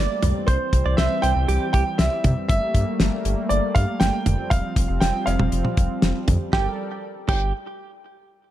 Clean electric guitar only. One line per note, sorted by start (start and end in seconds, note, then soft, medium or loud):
0.00 0.33 D5 medium
0.48 0.57 C5 loud
0.86 0.95 D5 medium
0.98 1.16 C5 medium
1.23 1.32 C5 medium
1.48 1.67 G4 medium
1.74 1.83 G4 medium
6.53 6.67 G4 medium
7.29 7.52 G4 medium